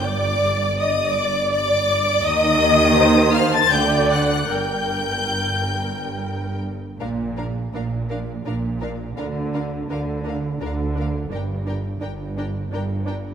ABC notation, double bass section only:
X:1
M:3/4
L:1/16
Q:1/4=83
K:Gm
V:1 name="Double bass section" clef=bass
G,,,12 | E,,8 D,,4 | G,,,8- G,,,3 z | [K:Bb] B,,,4 B,,,4 B,,,4 |
D,,4 D,,4 D,,4 | G,,,4 G,,,4 G,,,4 |]